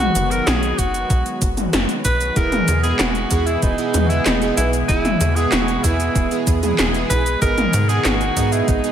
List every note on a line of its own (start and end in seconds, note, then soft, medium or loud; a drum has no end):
0.00 2.33 D#3 medium
0.00 2.33 F#3 medium
0.00 8.92 G#3 medium
0.00 2.33 B3 medium
0.00 0.32 F#4 loud
0.00 2.33 F#4 medium
0.00 closed hi-hat soft
0.00 mid tom loud
0.00 shaker soft
0.15 0.41 F#1 loud
0.15 closed hi-hat medium
0.15 shaker medium
0.31 0.49 A#4 medium
0.31 closed hi-hat soft
0.31 shaker soft
0.47 0.73 B1 loud
0.47 0.80 G#4 loud
0.47 snare loud
0.47 closed hi-hat medium
0.47 shaker soft
0.63 closed hi-hat soft
0.63 shaker soft
0.78 1.04 F#1 medium
0.78 1.42 F#4 medium
0.78 kick medium
0.78 closed hi-hat medium
0.78 shaker medium
0.94 closed hi-hat soft
0.94 shaker soft
1.10 1.23 B1 loud
1.10 kick loud
1.10 closed hi-hat medium
1.10 shaker soft
1.26 closed hi-hat soft
1.26 shaker soft
1.42 1.68 F#1 loud
1.42 kick loud
1.42 closed hi-hat medium
1.42 shaker medium
1.57 closed hi-hat soft
1.57 mid tom medium
1.57 shaker soft
1.73 1.86 F#1 loud
1.73 snare loud
1.73 closed hi-hat medium
1.73 shaker soft
1.89 closed hi-hat soft
1.89 shaker soft
2.05 2.31 B1 medium
2.05 2.38 B4 loud
2.05 kick medium
2.05 closed hi-hat medium
2.05 shaker medium
2.21 closed hi-hat soft
2.21 shaker soft
2.36 2.62 E1 loud
2.36 7.38 B2 medium
2.36 7.38 E3 medium
2.36 2.54 B3 medium
2.36 7.38 B3 medium
2.36 2.54 E4 medium
2.36 2.54 G#4 medium
2.36 8.92 G#4 medium
2.36 2.83 A#4 loud
2.36 kick loud
2.36 closed hi-hat medium
2.36 shaker soft
2.52 closed hi-hat soft
2.52 mid tom loud
2.52 shaker soft
2.68 2.94 E2 loud
2.68 closed hi-hat medium
2.68 shaker medium
2.83 3.12 B3 medium
2.83 3.12 E4 medium
2.83 3.00 G#4 medium
2.83 3.12 G#4 loud
2.83 closed hi-hat soft
2.83 shaker soft
2.99 3.26 E1 loud
2.99 3.47 F#4 loud
2.99 snare loud
2.99 clap medium
2.99 closed hi-hat medium
2.99 shaker soft
3.15 closed hi-hat soft
3.15 shaker soft
3.31 3.57 E2 medium
3.31 3.75 B3 medium
3.31 3.75 E4 medium
3.31 3.75 G#4 medium
3.31 kick medium
3.31 closed hi-hat medium
3.31 shaker medium
3.46 3.64 E4 medium
3.46 closed hi-hat soft
3.46 shaker soft
3.62 3.76 E1 loud
3.62 4.07 D#4 loud
3.62 kick loud
3.62 closed hi-hat medium
3.62 shaker soft
3.78 4.06 B3 medium
3.78 4.06 E4 medium
3.78 4.06 G#4 medium
3.78 closed hi-hat soft
3.78 shaker soft
3.94 4.20 E2 medium
3.94 closed hi-hat medium
3.94 mid tom loud
3.94 shaker medium
4.06 4.26 E4 medium
4.06 4.11 F#4 medium
4.10 4.38 B3 medium
4.10 4.38 E4 medium
4.10 4.38 G#4 medium
4.10 closed hi-hat soft
4.10 shaker soft
4.25 4.52 E1 loud
4.25 4.56 D#4 medium
4.25 snare loud
4.25 clap medium
4.25 closed hi-hat medium
4.25 shaker soft
4.42 4.70 B3 medium
4.42 4.70 E4 medium
4.42 4.70 G#4 loud
4.42 closed hi-hat soft
4.42 shaker soft
4.57 4.83 B1 loud
4.57 4.71 E4 medium
4.57 closed hi-hat medium
4.57 shaker medium
4.73 closed hi-hat soft
4.73 shaker soft
4.88 5.15 E1 loud
4.88 5.07 B3 medium
4.88 5.37 E4 loud
4.88 5.07 E4 medium
4.88 5.07 G#4 medium
4.88 kick loud
4.88 closed hi-hat medium
4.88 shaker soft
5.05 closed hi-hat soft
5.05 mid tom loud
5.05 shaker soft
5.21 5.47 E2 loud
5.21 closed hi-hat medium
5.21 shaker medium
5.35 5.64 B3 medium
5.35 5.64 E4 medium
5.35 5.53 G#4 medium
5.35 5.64 G#4 loud
5.35 closed hi-hat soft
5.35 shaker soft
5.51 5.78 E1 loud
5.51 5.85 F#4 loud
5.51 snare loud
5.51 clap medium
5.51 closed hi-hat medium
5.51 shaker soft
5.68 closed hi-hat soft
5.68 shaker soft
5.83 6.10 E2 medium
5.83 6.28 B3 medium
5.83 6.47 E4 medium
5.83 6.28 E4 medium
5.83 6.28 G#4 loud
5.83 kick medium
5.83 closed hi-hat medium
5.83 shaker medium
6.00 closed hi-hat soft
6.00 shaker soft
6.15 6.28 E1 loud
6.15 kick loud
6.15 closed hi-hat medium
6.15 shaker soft
6.31 6.59 B3 medium
6.31 6.59 E4 medium
6.31 6.59 G#4 medium
6.31 closed hi-hat soft
6.31 shaker soft
6.47 6.73 E2 medium
6.47 kick loud
6.47 closed hi-hat medium
6.47 shaker medium
6.63 6.91 B3 medium
6.63 6.91 E4 medium
6.63 6.91 G#4 medium
6.63 closed hi-hat soft
6.63 mid tom medium
6.63 shaker soft
6.79 7.05 E1 loud
6.79 snare loud
6.79 clap loud
6.79 closed hi-hat medium
6.79 shaker soft
6.94 7.22 B3 medium
6.94 7.22 E4 medium
6.94 7.22 G#4 loud
6.94 closed hi-hat soft
6.94 shaker soft
7.10 7.36 B1 loud
7.10 7.39 B4 loud
7.10 kick medium
7.10 closed hi-hat medium
7.10 shaker medium
7.26 closed hi-hat soft
7.26 shaker soft
7.41 7.68 G#1 loud
7.41 8.92 B2 medium
7.41 8.92 D#3 medium
7.41 7.59 B3 medium
7.41 7.59 D#4 medium
7.41 8.92 D#4 medium
7.41 7.59 G#4 medium
7.41 7.91 A#4 loud
7.41 kick loud
7.41 closed hi-hat medium
7.41 shaker soft
7.58 closed hi-hat soft
7.58 mid tom loud
7.58 shaker soft
7.73 7.99 G#2 loud
7.73 closed hi-hat medium
7.73 shaker medium
7.89 8.17 B3 medium
7.89 8.17 D#4 medium
7.89 8.06 G#4 loud
7.89 8.17 G#4 loud
7.89 closed hi-hat soft
7.89 shaker soft
8.05 8.31 G#1 loud
8.05 8.54 F#4 loud
8.05 snare loud
8.05 clap loud
8.05 closed hi-hat medium
8.05 shaker soft
8.21 closed hi-hat soft
8.21 shaker soft
8.37 8.62 G#2 medium
8.37 8.80 B3 medium
8.37 8.80 D#4 medium
8.37 8.80 G#4 loud
8.37 kick medium
8.37 closed hi-hat medium
8.37 shaker medium
8.52 8.69 E4 medium
8.52 closed hi-hat soft
8.52 shaker soft
8.68 8.81 G#1 loud
8.68 8.92 D#4 loud
8.68 kick loud
8.68 closed hi-hat medium
8.68 shaker soft
8.84 8.92 B3 medium
8.84 8.92 D#4 medium
8.84 8.92 G#4 medium
8.84 closed hi-hat soft
8.84 shaker soft